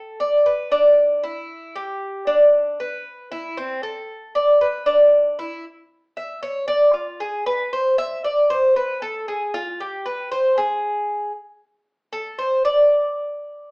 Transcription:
0, 0, Header, 1, 2, 480
1, 0, Start_track
1, 0, Tempo, 518583
1, 1391, Time_signature, 4, 2, 24, 8
1, 12692, End_track
2, 0, Start_track
2, 0, Title_t, "Cuban tres"
2, 0, Program_c, 0, 25
2, 0, Note_on_c, 0, 69, 77
2, 171, Note_off_c, 0, 69, 0
2, 186, Note_on_c, 0, 74, 77
2, 421, Note_off_c, 0, 74, 0
2, 426, Note_on_c, 0, 71, 71
2, 661, Note_off_c, 0, 71, 0
2, 662, Note_on_c, 0, 62, 89
2, 1132, Note_off_c, 0, 62, 0
2, 1143, Note_on_c, 0, 64, 81
2, 1612, Note_off_c, 0, 64, 0
2, 1625, Note_on_c, 0, 67, 74
2, 2093, Note_off_c, 0, 67, 0
2, 2101, Note_on_c, 0, 62, 87
2, 2571, Note_off_c, 0, 62, 0
2, 2591, Note_on_c, 0, 71, 74
2, 3057, Note_off_c, 0, 71, 0
2, 3069, Note_on_c, 0, 64, 81
2, 3303, Note_off_c, 0, 64, 0
2, 3308, Note_on_c, 0, 60, 85
2, 3542, Note_off_c, 0, 60, 0
2, 3546, Note_on_c, 0, 69, 74
2, 4014, Note_off_c, 0, 69, 0
2, 4028, Note_on_c, 0, 74, 80
2, 4262, Note_off_c, 0, 74, 0
2, 4269, Note_on_c, 0, 71, 75
2, 4499, Note_on_c, 0, 62, 83
2, 4502, Note_off_c, 0, 71, 0
2, 4970, Note_off_c, 0, 62, 0
2, 4987, Note_on_c, 0, 64, 77
2, 5222, Note_off_c, 0, 64, 0
2, 5710, Note_on_c, 0, 76, 78
2, 5943, Note_off_c, 0, 76, 0
2, 5948, Note_on_c, 0, 73, 91
2, 6176, Note_off_c, 0, 73, 0
2, 6180, Note_on_c, 0, 74, 98
2, 6418, Note_off_c, 0, 74, 0
2, 6420, Note_on_c, 0, 65, 58
2, 6658, Note_off_c, 0, 65, 0
2, 6667, Note_on_c, 0, 68, 72
2, 6901, Note_off_c, 0, 68, 0
2, 6908, Note_on_c, 0, 71, 91
2, 7142, Note_off_c, 0, 71, 0
2, 7154, Note_on_c, 0, 72, 80
2, 7385, Note_off_c, 0, 72, 0
2, 7389, Note_on_c, 0, 76, 107
2, 7622, Note_off_c, 0, 76, 0
2, 7631, Note_on_c, 0, 74, 76
2, 7863, Note_off_c, 0, 74, 0
2, 7869, Note_on_c, 0, 72, 91
2, 8103, Note_off_c, 0, 72, 0
2, 8111, Note_on_c, 0, 71, 77
2, 8344, Note_off_c, 0, 71, 0
2, 8349, Note_on_c, 0, 69, 86
2, 8582, Note_off_c, 0, 69, 0
2, 8591, Note_on_c, 0, 68, 76
2, 8823, Note_off_c, 0, 68, 0
2, 8830, Note_on_c, 0, 65, 83
2, 9063, Note_off_c, 0, 65, 0
2, 9075, Note_on_c, 0, 67, 71
2, 9306, Note_off_c, 0, 67, 0
2, 9308, Note_on_c, 0, 71, 80
2, 9542, Note_off_c, 0, 71, 0
2, 9548, Note_on_c, 0, 72, 88
2, 9782, Note_off_c, 0, 72, 0
2, 9789, Note_on_c, 0, 68, 82
2, 10472, Note_off_c, 0, 68, 0
2, 11223, Note_on_c, 0, 69, 81
2, 11459, Note_off_c, 0, 69, 0
2, 11463, Note_on_c, 0, 72, 78
2, 11699, Note_off_c, 0, 72, 0
2, 11707, Note_on_c, 0, 74, 93
2, 12692, Note_off_c, 0, 74, 0
2, 12692, End_track
0, 0, End_of_file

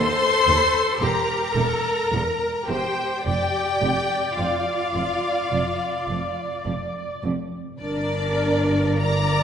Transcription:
0, 0, Header, 1, 6, 480
1, 0, Start_track
1, 0, Tempo, 1094891
1, 932, Tempo, 1125704
1, 1415, Time_signature, 4, 2, 24, 8
1, 1892, Tempo, 1153846
1, 3994, End_track
2, 0, Start_track
2, 0, Title_t, "Violin section"
2, 0, Program_c, 0, 48
2, 0, Note_on_c, 0, 84, 117
2, 441, Note_off_c, 0, 84, 0
2, 447, Note_on_c, 0, 82, 82
2, 1168, Note_on_c, 0, 79, 79
2, 1174, Note_off_c, 0, 82, 0
2, 1407, Note_off_c, 0, 79, 0
2, 1419, Note_on_c, 0, 79, 92
2, 1884, Note_off_c, 0, 79, 0
2, 1890, Note_on_c, 0, 77, 74
2, 2841, Note_off_c, 0, 77, 0
2, 3318, Note_on_c, 0, 74, 81
2, 3793, Note_off_c, 0, 74, 0
2, 3812, Note_on_c, 0, 82, 99
2, 3994, Note_off_c, 0, 82, 0
2, 3994, End_track
3, 0, Start_track
3, 0, Title_t, "Viola section"
3, 0, Program_c, 1, 48
3, 0, Note_on_c, 1, 69, 87
3, 432, Note_off_c, 1, 69, 0
3, 438, Note_on_c, 1, 67, 72
3, 681, Note_on_c, 1, 69, 70
3, 683, Note_off_c, 1, 67, 0
3, 925, Note_on_c, 1, 70, 61
3, 929, Note_off_c, 1, 69, 0
3, 1170, Note_off_c, 1, 70, 0
3, 1172, Note_on_c, 1, 72, 64
3, 1410, Note_on_c, 1, 74, 67
3, 1414, Note_off_c, 1, 72, 0
3, 3066, Note_off_c, 1, 74, 0
3, 3327, Note_on_c, 1, 70, 68
3, 3797, Note_off_c, 1, 70, 0
3, 3813, Note_on_c, 1, 74, 85
3, 3994, Note_off_c, 1, 74, 0
3, 3994, End_track
4, 0, Start_track
4, 0, Title_t, "Violin section"
4, 0, Program_c, 2, 48
4, 0, Note_on_c, 2, 72, 94
4, 443, Note_off_c, 2, 72, 0
4, 447, Note_on_c, 2, 70, 83
4, 1162, Note_on_c, 2, 67, 64
4, 1174, Note_off_c, 2, 70, 0
4, 1404, Note_off_c, 2, 67, 0
4, 1409, Note_on_c, 2, 67, 75
4, 1880, Note_off_c, 2, 67, 0
4, 1884, Note_on_c, 2, 65, 59
4, 2838, Note_off_c, 2, 65, 0
4, 3316, Note_on_c, 2, 62, 71
4, 3792, Note_off_c, 2, 62, 0
4, 3804, Note_on_c, 2, 70, 78
4, 3994, Note_off_c, 2, 70, 0
4, 3994, End_track
5, 0, Start_track
5, 0, Title_t, "Cello section"
5, 0, Program_c, 3, 48
5, 207, Note_on_c, 3, 39, 70
5, 242, Note_off_c, 3, 39, 0
5, 444, Note_on_c, 3, 40, 65
5, 479, Note_off_c, 3, 40, 0
5, 685, Note_on_c, 3, 40, 64
5, 721, Note_off_c, 3, 40, 0
5, 933, Note_on_c, 3, 40, 68
5, 967, Note_off_c, 3, 40, 0
5, 1170, Note_on_c, 3, 40, 61
5, 1204, Note_off_c, 3, 40, 0
5, 1411, Note_on_c, 3, 41, 59
5, 1445, Note_off_c, 3, 41, 0
5, 1654, Note_on_c, 3, 41, 67
5, 1688, Note_off_c, 3, 41, 0
5, 1890, Note_on_c, 3, 41, 61
5, 1924, Note_off_c, 3, 41, 0
5, 2128, Note_on_c, 3, 41, 56
5, 2161, Note_off_c, 3, 41, 0
5, 2366, Note_on_c, 3, 41, 63
5, 2399, Note_off_c, 3, 41, 0
5, 2606, Note_on_c, 3, 41, 57
5, 2639, Note_off_c, 3, 41, 0
5, 2839, Note_on_c, 3, 41, 58
5, 2872, Note_off_c, 3, 41, 0
5, 3080, Note_on_c, 3, 41, 64
5, 3113, Note_off_c, 3, 41, 0
5, 3321, Note_on_c, 3, 43, 60
5, 3994, Note_off_c, 3, 43, 0
5, 3994, End_track
6, 0, Start_track
6, 0, Title_t, "Double bass section"
6, 0, Program_c, 4, 48
6, 203, Note_on_c, 4, 39, 62
6, 238, Note_off_c, 4, 39, 0
6, 441, Note_on_c, 4, 28, 68
6, 476, Note_off_c, 4, 28, 0
6, 682, Note_on_c, 4, 28, 68
6, 717, Note_off_c, 4, 28, 0
6, 932, Note_on_c, 4, 28, 66
6, 966, Note_off_c, 4, 28, 0
6, 1173, Note_on_c, 4, 28, 56
6, 1207, Note_off_c, 4, 28, 0
6, 1416, Note_on_c, 4, 29, 64
6, 1450, Note_off_c, 4, 29, 0
6, 1653, Note_on_c, 4, 29, 69
6, 1687, Note_off_c, 4, 29, 0
6, 1889, Note_on_c, 4, 29, 57
6, 1923, Note_off_c, 4, 29, 0
6, 2128, Note_on_c, 4, 29, 57
6, 2161, Note_off_c, 4, 29, 0
6, 2367, Note_on_c, 4, 29, 58
6, 2401, Note_off_c, 4, 29, 0
6, 2600, Note_on_c, 4, 29, 56
6, 2633, Note_off_c, 4, 29, 0
6, 2838, Note_on_c, 4, 29, 57
6, 2871, Note_off_c, 4, 29, 0
6, 3082, Note_on_c, 4, 29, 62
6, 3115, Note_off_c, 4, 29, 0
6, 3324, Note_on_c, 4, 31, 65
6, 3994, Note_off_c, 4, 31, 0
6, 3994, End_track
0, 0, End_of_file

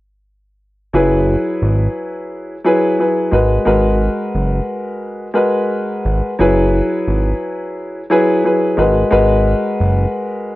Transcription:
0, 0, Header, 1, 3, 480
1, 0, Start_track
1, 0, Tempo, 681818
1, 662, Time_signature, 4, 2, 24, 8
1, 7431, End_track
2, 0, Start_track
2, 0, Title_t, "Upright piano"
2, 0, Program_c, 0, 0
2, 657, Note_on_c, 0, 54, 86
2, 661, Note_on_c, 0, 64, 89
2, 665, Note_on_c, 0, 68, 82
2, 669, Note_on_c, 0, 71, 99
2, 1788, Note_off_c, 0, 54, 0
2, 1790, Note_off_c, 0, 64, 0
2, 1792, Note_off_c, 0, 68, 0
2, 1794, Note_off_c, 0, 71, 0
2, 1861, Note_on_c, 0, 54, 90
2, 1865, Note_on_c, 0, 64, 88
2, 1869, Note_on_c, 0, 68, 89
2, 1873, Note_on_c, 0, 71, 104
2, 2087, Note_off_c, 0, 54, 0
2, 2089, Note_off_c, 0, 64, 0
2, 2091, Note_off_c, 0, 68, 0
2, 2093, Note_off_c, 0, 71, 0
2, 2104, Note_on_c, 0, 54, 71
2, 2108, Note_on_c, 0, 64, 66
2, 2112, Note_on_c, 0, 68, 67
2, 2116, Note_on_c, 0, 71, 85
2, 2328, Note_off_c, 0, 54, 0
2, 2331, Note_off_c, 0, 64, 0
2, 2332, Note_off_c, 0, 68, 0
2, 2333, Note_on_c, 0, 56, 83
2, 2335, Note_off_c, 0, 71, 0
2, 2337, Note_on_c, 0, 66, 65
2, 2341, Note_on_c, 0, 70, 65
2, 2345, Note_on_c, 0, 71, 91
2, 2561, Note_off_c, 0, 56, 0
2, 2565, Note_off_c, 0, 66, 0
2, 2567, Note_off_c, 0, 70, 0
2, 2569, Note_off_c, 0, 71, 0
2, 2571, Note_on_c, 0, 56, 92
2, 2575, Note_on_c, 0, 66, 79
2, 2579, Note_on_c, 0, 70, 82
2, 2583, Note_on_c, 0, 71, 100
2, 3705, Note_off_c, 0, 56, 0
2, 3707, Note_off_c, 0, 66, 0
2, 3709, Note_off_c, 0, 70, 0
2, 3711, Note_off_c, 0, 71, 0
2, 3757, Note_on_c, 0, 56, 93
2, 3761, Note_on_c, 0, 66, 76
2, 3766, Note_on_c, 0, 70, 83
2, 3769, Note_on_c, 0, 71, 99
2, 4447, Note_off_c, 0, 56, 0
2, 4449, Note_off_c, 0, 66, 0
2, 4451, Note_off_c, 0, 70, 0
2, 4453, Note_off_c, 0, 71, 0
2, 4497, Note_on_c, 0, 54, 92
2, 4500, Note_on_c, 0, 64, 93
2, 4505, Note_on_c, 0, 68, 85
2, 4509, Note_on_c, 0, 71, 105
2, 5628, Note_off_c, 0, 54, 0
2, 5630, Note_off_c, 0, 64, 0
2, 5632, Note_off_c, 0, 68, 0
2, 5634, Note_off_c, 0, 71, 0
2, 5701, Note_on_c, 0, 54, 96
2, 5704, Note_on_c, 0, 64, 94
2, 5709, Note_on_c, 0, 68, 98
2, 5713, Note_on_c, 0, 71, 106
2, 5927, Note_off_c, 0, 54, 0
2, 5929, Note_off_c, 0, 64, 0
2, 5931, Note_off_c, 0, 68, 0
2, 5933, Note_off_c, 0, 71, 0
2, 5943, Note_on_c, 0, 54, 75
2, 5947, Note_on_c, 0, 64, 69
2, 5951, Note_on_c, 0, 68, 74
2, 5956, Note_on_c, 0, 71, 92
2, 6168, Note_off_c, 0, 54, 0
2, 6170, Note_off_c, 0, 64, 0
2, 6172, Note_off_c, 0, 68, 0
2, 6174, Note_on_c, 0, 56, 87
2, 6175, Note_off_c, 0, 71, 0
2, 6178, Note_on_c, 0, 66, 70
2, 6181, Note_on_c, 0, 70, 70
2, 6186, Note_on_c, 0, 71, 94
2, 6400, Note_off_c, 0, 56, 0
2, 6404, Note_off_c, 0, 66, 0
2, 6407, Note_off_c, 0, 70, 0
2, 6410, Note_off_c, 0, 71, 0
2, 6411, Note_on_c, 0, 56, 98
2, 6415, Note_on_c, 0, 66, 83
2, 6419, Note_on_c, 0, 70, 86
2, 6423, Note_on_c, 0, 71, 107
2, 7431, Note_off_c, 0, 56, 0
2, 7431, Note_off_c, 0, 66, 0
2, 7431, Note_off_c, 0, 70, 0
2, 7431, Note_off_c, 0, 71, 0
2, 7431, End_track
3, 0, Start_track
3, 0, Title_t, "Analog synth bass"
3, 0, Program_c, 1, 38
3, 661, Note_on_c, 1, 30, 107
3, 959, Note_off_c, 1, 30, 0
3, 1141, Note_on_c, 1, 32, 91
3, 1324, Note_off_c, 1, 32, 0
3, 2340, Note_on_c, 1, 32, 105
3, 2524, Note_off_c, 1, 32, 0
3, 2580, Note_on_c, 1, 32, 102
3, 2879, Note_off_c, 1, 32, 0
3, 3061, Note_on_c, 1, 30, 91
3, 3244, Note_off_c, 1, 30, 0
3, 4261, Note_on_c, 1, 32, 101
3, 4376, Note_off_c, 1, 32, 0
3, 4501, Note_on_c, 1, 30, 109
3, 4799, Note_off_c, 1, 30, 0
3, 4981, Note_on_c, 1, 32, 91
3, 5164, Note_off_c, 1, 32, 0
3, 6181, Note_on_c, 1, 32, 113
3, 6364, Note_off_c, 1, 32, 0
3, 6421, Note_on_c, 1, 32, 105
3, 6719, Note_off_c, 1, 32, 0
3, 6901, Note_on_c, 1, 30, 98
3, 7084, Note_off_c, 1, 30, 0
3, 7431, End_track
0, 0, End_of_file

